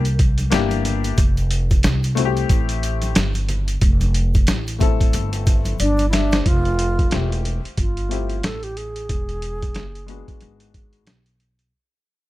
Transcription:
Already playing: C2 A#4
0.05 closed hi-hat, shaker
0.19 kick, closed hi-hat, shaker
0.38 closed hi-hat, high conga, shaker
0.50 G1 A#3 D4 E4 G4, snare, closed hi-hat, shaker
0.70 closed hi-hat, high conga, shaker
0.85 closed hi-hat, low conga, shaker
1.04 closed hi-hat, shaker
1.17 F1, kick, closed hi-hat, shaker
1.37 closed hi-hat, shaker
1.51 closed hi-hat, shaker
1.70 kick, closed hi-hat, shaker
1.83 C2, snare, closed hi-hat, shaker
2.03 closed hi-hat, shaker
2.15 A3 C4 E4 F#4, closed hi-hat, low conga, shaker
2.25 G4
2.36 closed hi-hat, shaker
2.49 A1, kick, closed hi-hat, shaker
2.69 closed hi-hat, shaker
2.83 closed hi-hat, shaker
3.02 closed hi-hat, high conga, shaker
3.15 G1, snare, closed hi-hat, shaker
3.34 closed hi-hat, high conga, shaker
3.49 closed hi-hat, low conga, shaker
3.68 closed hi-hat, shaker
3.81 F1, kick, closed hi-hat, shaker
4.00 closed hi-hat, high conga, shaker
4.14 closed hi-hat, shaker
4.34 kick, closed hi-hat, shaker
4.47 A1, snare, closed hi-hat, shaker
4.67 closed hi-hat, shaker
4.79 A3 C4 E4 A4, kick, closed hi-hat, high conga, low conga, shaker
5.00 kick, closed hi-hat, shaker
5.13 G1, closed hi-hat, shaker
5.33 closed hi-hat, shaker
5.46 kick, closed hi-hat, shaker
5.65 closed hi-hat, high conga, shaker
5.79 G1 D4 D5, closed hi-hat, shaker
5.97 closed hi-hat, high conga, shaker
6.09 E4 E5, snare, closed hi-hat, low conga, shaker
6.15 D4
6.31 C5, snare, closed hi-hat, shaker
6.46 F1 F4, kick, closed hi-hat
6.65 closed hi-hat
6.79 closed hi-hat
6.99 kick, closed hi-hat
7.09 E1 A3 C4 G4 E5, snare, closed hi-hat
7.32 closed hi-hat
7.45 closed hi-hat
7.65 muted upright bass stroke, closed hi-hat
7.77 G1 F4, kick, closed hi-hat
7.97 closed hi-hat
8.09 A3 C4 E4 G4, closed hi-hat
8.29 closed hi-hat
8.43 A1 A4, snare, closed hi-hat
8.63 G4, closed hi-hat
8.77 G#4, closed hi-hat
8.96 closed hi-hat
9.09 E1, kick, closed hi-hat
9.29 closed hi-hat
9.42 closed hi-hat
9.62 kick, closed hi-hat
9.75 F#1, snare, closed hi-hat
9.95 closed hi-hat
10.07 G#3 B3 D4 F#4, closed hi-hat
10.28 muted upright bass stroke, kick, closed hi-hat
10.41 G#1, closed hi-hat
10.60 closed hi-hat
10.74 kick, closed hi-hat
10.93 closed hi-hat
11.07 B1, snare, closed hi-hat
11.26 closed hi-hat
11.40 closed hi-hat
11.59 closed hi-hat

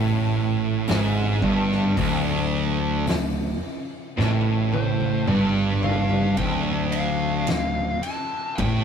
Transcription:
Already playing: A1 A2
0.87 G#1 G#2, snare, open hi-hat
1.42 G1 G2, kick
1.72 snare
1.97 D1 D2, kick, open hi-hat
3.07 D1 D2, snare, open hi-hat
4.17 A1 A2, snare
4.72 C5, high tom
5.00 high tom
5.27 G1 G2 D5, mid tom
5.83 F5, floor tom
6.09 floor tom
6.37 D1 D2 G5, kick, ride
6.92 F5, ride
7.47 D1 D2, snare, ride
8.03 A5, ride
8.55 A1 A2 G5, kick, ride

